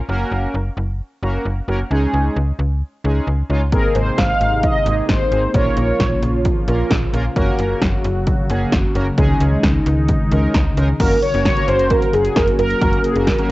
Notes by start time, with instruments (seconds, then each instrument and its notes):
0.09 fm bass F#1, analog polysynth A#3 C#4 F#4 A#4
0.31 fm bass F#1
0.54 fm bass F#1
0.77 fm bass F#1
1.22 fm bass F#1, analog polysynth A#3 C#4 F#4 A#4
1.45 fm bass F#1
1.68 fm bass F#1, analog polysynth A#3 C#4 F#4 A#4
1.91 fm bass C#2, analog polysynth G#3 C#4 D#4 G#4
2.13 fm bass C#2
2.36 fm bass C#2
2.59 fm bass C#2
3.04 fm bass C#2, analog polysynth G#3 C#4 D#4 G#4
3.27 fm bass C#2
3.50 fm bass C#2, analog polysynth G#3 C#4 D#4 F4
3.72 fm bass G#1, analog synth pad C3 G#3 A#3 D#4, analog polysynth A#3 C4 D#4 G#4 A#4, kick, closed hi-hat
3.95 fm bass G#1, analog polysynth C5, closed hi-hat
4.18 fm bass G#1, analog polysynth F5, kick, snare, closed hi-hat
4.41 fm bass G#1, closed hi-hat
4.63 analog polysynth D#5, kick, closed hi-hat
4.86 fm bass G#1, analog polysynth A#3 C4 D#4 G#4, closed hi-hat
5.09 fm bass G#1, analog polysynth C5, kick, snare, closed hi-hat
5.32 fm bass G#1, analog polysynth A#3 C4 D#4 G#4, closed hi-hat
5.54 fm bass A#1, analog synth pad C#3 F3 F4, analog polysynth A#3 C#4 F4 A#4 C#5, kick, closed hi-hat
5.77 fm bass A#1, analog polysynth C#5, closed hi-hat
6.00 fm bass A#1, kick, snare, closed hi-hat
6.22 fm bass A#1, closed hi-hat
6.45 kick, closed hi-hat
6.68 fm bass A#1, analog polysynth A#3 C#4 F4 A#4, closed hi-hat
6.91 fm bass A#1, kick, snare, closed hi-hat
7.13 fm bass A#1, analog polysynth A#3 C#4 F4 A#4, closed hi-hat
7.36 fm bass F#1, analog synth pad F#3 F#4, analog polysynth A#3 C#4 F#4 A#4, kick, closed hi-hat
7.59 fm bass F#1, closed hi-hat
7.82 fm bass F#1, kick, snare, closed hi-hat
8.04 fm bass F#1, closed hi-hat
8.27 kick, closed hi-hat
8.50 fm bass F#1, analog polysynth A#3 C#4 F#4 G#4, closed hi-hat
8.72 fm bass F#1, kick, snare, closed hi-hat
8.95 fm bass F#1, analog polysynth A#3 C#4 F#4 A#4, closed hi-hat
9.18 fm bass C#2, analog synth pad D#3 G#3 D#4, analog polysynth G#3 C#4 D#4 G#4, kick, closed hi-hat
9.40 fm bass C#2, closed hi-hat
9.63 fm bass C#2, kick, snare, closed hi-hat
9.86 fm bass C#2, closed hi-hat
10.08 kick, closed hi-hat
10.31 fm bass C#2, analog polysynth G#3 C#4 D#4 A#4, closed hi-hat
10.54 fm bass C#2, kick, snare, closed hi-hat
10.77 fm bass C#2, analog polysynth G#3 C#4 D#4 A#4, closed hi-hat
11.00 fm bass F#1, analog synth pad C#3 F#3 A#3 F#4, analog polysynth A#3 C#4 F#4 A#4, kick, closed hi-hat, crash
11.11 closed hi-hat
11.22 analog polysynth C#5, closed hi-hat
11.34 fm bass F#1, analog polysynth A#3 C#4 F#4 A#4, closed hi-hat
11.45 analog polysynth C#5, kick, snare, closed hi-hat
11.57 analog polysynth A#3 C#4 F#4 A#4, closed hi-hat
11.68 fm bass F#1, analog polysynth C5, closed hi-hat
11.79 closed hi-hat
11.90 analog polysynth A#4, kick, closed hi-hat
12.02 closed hi-hat
12.13 fm bass F#1, analog polysynth G#4, closed hi-hat
12.25 closed hi-hat
12.36 fm bass F#1, analog polysynth A#4, kick, snare, closed hi-hat
12.48 closed hi-hat
12.59 fm bass F#1, analog polysynth A#4, closed hi-hat
12.70 closed hi-hat
12.81 fm bass F#1, analog polysynth A#3 C#4 F#4 A#4, kick, closed hi-hat
12.93 closed hi-hat
13.04 analog polysynth G#4, closed hi-hat
13.15 fm bass F#1, analog polysynth A#3 C#4 F#4 A#4, closed hi-hat
13.27 analog polysynth A#4, kick, snare, closed hi-hat
13.38 analog polysynth A#3 C#4 F#4 A#4, closed hi-hat